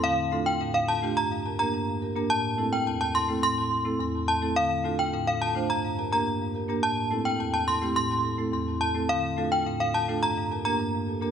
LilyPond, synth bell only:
\new Staff \with { instrumentName = "Synth bell" } { \time 4/4 \key a \phrygian \tempo 4 = 106 f''8 r16 g''16 r16 f''16 a''16 r16 bes''16 r8 bes''16 r4 | a''8 r16 g''16 r16 a''16 c'''16 r16 c'''8. r8. a''16 r16 | f''8 r16 g''16 r16 f''16 a''16 r16 bes''16 r8 bes''16 r4 | a''8 r16 g''16 r16 a''16 c'''16 r16 c'''8. r8. a''16 r16 |
f''8 r16 g''16 r16 f''16 a''16 r16 bes''16 r8 bes''16 r4 | }